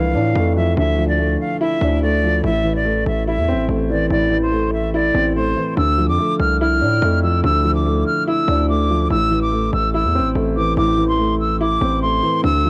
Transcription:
Already playing: 808-style bass C2, grand piano D3 E3 F3 A3, flute F5
0.15 808-style bass A2, grand piano D4
0.35 808-style bass F2, grand piano A3
0.56 grand piano F3, flute E5
0.77 808-style bass D2, grand piano D3, flute E5
0.98 grand piano F3
1.08 flute D5
1.19 grand piano A3
1.40 flute F5
1.61 grand piano E4, flute E5
1.81 808-style bass D2, grand piano D4
2.02 grand piano A3, flute D5
2.23 grand piano F3
2.44 808-style bass A1, grand piano A2, flute E5
2.64 grand piano E3
2.75 flute D5
2.85 grand piano A3
3.06 808-style bass A1, flute E5
3.27 grand piano E4, flute E5
3.38 808-style bass E2
3.48 grand piano C4
3.53 808-style bass A1
3.69 808-style bass A1, grand piano A3
3.90 grand piano E3, flute D5
4.10 808-style bass A1, grand piano A2, flute D5
4.31 grand piano E3
4.42 flute C5
4.52 grand piano A3
4.73 flute E5
4.94 grand piano E4, flute D5
5.14 808-style bass A1, grand piano C4
5.35 grand piano A3, flute C5
5.56 grand piano E3
5.77 808-style bass D2, grand piano D3, flute E6
5.98 grand piano F3
6.08 808-style bass F2, flute D6
6.19 grand piano A3
6.40 808-style bass C2, flute F6
6.61 grand piano E4, flute F6
6.81 808-style bass A2, grand piano D4
7.02 808-style bass F2, grand piano A3
7.23 grand piano F3, flute E6
7.44 808-style bass D2, grand piano D3, flute E6
7.64 grand piano F3
7.75 flute D6
7.85 grand piano A3
8.06 flute F6
8.27 grand piano E4, flute E6
8.48 808-style bass D2, grand piano D4
8.69 grand piano A3, flute D6
8.90 grand piano F3
9.10 808-style bass A1, grand piano A2, flute E6
9.31 grand piano E3
9.42 flute D6
9.52 grand piano A3
9.73 808-style bass A1, flute E6
9.94 grand piano E4, flute E6
10.04 808-style bass E2
10.15 grand piano C4
10.20 808-style bass A1
10.35 808-style bass A1, grand piano A3
10.56 grand piano E3, flute D6
10.77 808-style bass A1, grand piano A2, flute D6
10.97 grand piano E3
11.08 flute C6
11.18 grand piano A3
11.40 flute E6
11.61 grand piano E4, flute D6
11.81 808-style bass A1, grand piano C4
12.02 grand piano A3, flute C6
12.23 grand piano E3
12.44 808-style bass D2, grand piano D3, flute E6
12.65 grand piano F3

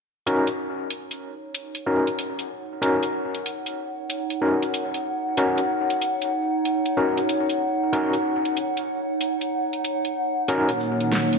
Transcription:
0.27 tine electric piano C#4 D#4 F#4 A#4, ambient pad D#4, closed hi-hat
0.47 closed hi-hat
0.74 ambient pad C#5
0.90 closed hi-hat
1.11 closed hi-hat
1.55 closed hi-hat
1.73 ambient pad F#5, closed hi-hat
1.86 tine electric piano C#4 D#4 F#4 A#4
2.07 closed hi-hat
2.19 closed hi-hat
2.39 closed hi-hat
2.82 tine electric piano C#4 D#4 F#4 A#4, closed hi-hat
3.03 closed hi-hat
3.35 closed hi-hat
3.46 closed hi-hat
3.66 closed hi-hat
4.10 closed hi-hat
4.30 closed hi-hat
4.42 tine electric piano C#4 D#4 F#4 A#4
4.62 closed hi-hat
4.74 closed hi-hat
4.94 closed hi-hat
5.37 tine electric piano C#4 D#4 F#4 A#4, closed hi-hat
5.58 closed hi-hat
5.90 closed hi-hat
6.02 closed hi-hat
6.22 closed hi-hat
6.65 closed hi-hat
6.86 closed hi-hat
6.97 tine electric piano C#4 D#4 F#4 A#4
7.17 closed hi-hat
7.29 closed hi-hat
7.50 closed hi-hat
7.93 tine electric piano C#4 D#4 F#4 A#4, closed hi-hat
8.13 closed hi-hat
8.45 closed hi-hat
8.57 closed hi-hat
8.77 closed hi-hat
9.21 closed hi-hat
9.41 closed hi-hat
9.73 closed hi-hat
9.85 closed hi-hat
10.05 closed hi-hat
10.48 analog synth pad A#3 D#4 F#4 C#5, tine electric piano C#4 D#4 F#4 A#4, closed hi-hat, shaker
10.69 closed hi-hat, shaker
10.80 shaker
11.00 closed hi-hat, shaker
11.12 snare, closed hi-hat, shaker
11.33 closed hi-hat

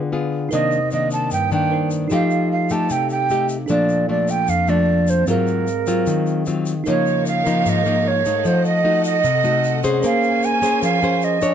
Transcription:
Already playing: nylon-string guitar D3, tine electric piano F4 G#4 B4 G5
0.12 nylon-string guitar B3 F4 G#4
0.49 nylon-string guitar C3, tine electric piano D#4 A#4 C5, shaker
0.53 nylon-string guitar D#3 A#3 D4, flute D#5, tine electric piano D#6
0.71 shaker
0.91 nylon-string guitar D#3 A#3 D4, flute D#5, shaker
1.11 flute A5, shaker
1.31 nylon-string guitar G2, flute G5, shaker
1.51 nylon-string guitar D#3 A#3 D4, flute G5, shaker
1.70 tine electric piano D#4 A#4 C5 D5
1.91 shaker
2.08 nylon-string guitar F3 A3, tine electric piano D#4 G4, shaker
2.12 nylon-string guitar D#4 G4, tine electric piano A4 F5, flute F5
2.31 shaker
2.52 flute F5
2.70 nylon-string guitar A3 D#4 G4, flute A5, shaker
2.90 nylon-string guitar C3, flute G5, shaker
3.10 flute G5, shaker
3.29 nylon-string guitar A3 D#4 G4, shaker
3.49 shaker
3.66 nylon-string guitar A#2 F3 A3, tine electric piano D4 A4, shaker
3.70 tine electric piano A#3 F5, nylon-string guitar D4, flute D5
3.89 shaker
4.09 nylon-string guitar F3 A3 D4, flute D5
4.28 flute G5, shaker
4.47 nylon-string guitar F2, flute F5, shaker
4.67 nylon-string guitar F3 A3 D4, flute D5, shaker
5.07 flute C5, shaker
5.25 nylon-string guitar G#2 F#3 C4 F4, tine electric piano C4 G#4, flute A#4, shaker
5.30 tine electric piano A#4 F5
5.47 shaker
5.67 shaker
5.87 nylon-string guitar F#3 C4 F4, shaker
6.06 nylon-string guitar D#3, shaker
6.26 shaker
6.46 nylon-string guitar F#3 C4 F4, shaker
6.66 shaker
6.84 nylon-string guitar C#3 F3 A#3 D#4, tine electric piano D#4 A#4, string section D#4 A#4 C#5 F5, shaker
6.88 tine electric piano C#5 F5, flute C#5
7.06 shaker
7.26 flute F5, shaker
7.46 nylon-string guitar F3 A#3 D#4, shaker
7.66 nylon-string guitar G#2, flute D#5, shaker
7.86 nylon-string guitar F3 A#3 D#4, shaker
8.08 flute C#5
8.25 nylon-string guitar A3 D#4, shaker
8.44 nylon-string guitar F3, tine electric piano A4 D#5, string section A4 D#5 F#5, flute C5, shaker
8.48 tine electric piano F#5
8.65 flute D#5, shaker
8.84 nylon-string guitar A3 D#4 F#4
9.04 flute D#5, shaker
9.24 nylon-string guitar C3, shaker
9.44 nylon-string guitar A3 D#4 F#4, shaker
9.64 tine electric piano D#5 F#5, shaker
9.83 nylon-string guitar C#4 G#4 C5, shaker
10.00 nylon-string guitar A#3, tine electric piano C#4 A#4 C5, string section C#4 A#4 C5 G#5, shaker
10.05 flute F5, tine electric piano G#5
10.23 shaker
10.43 flute G#5, shaker
10.62 nylon-string guitar C#4 G#4 C5, shaker
10.82 nylon-string guitar F3, flute F5, shaker
11.02 nylon-string guitar C#4 G#4 C5, shaker
11.22 flute D#5, shaker
11.42 nylon-string guitar D4 A4 C#5, shaker

